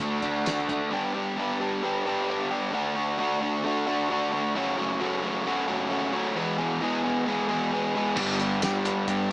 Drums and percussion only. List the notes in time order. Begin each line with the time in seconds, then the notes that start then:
0.00 kick
0.22 kick, closed hi-hat
0.46 snare, closed hi-hat, tambourine
0.59 snare
0.69 kick, closed hi-hat
8.17 kick, crash
8.39 closed hi-hat
8.62 snare, closed hi-hat, tambourine
8.85 closed hi-hat
9.08 kick, closed hi-hat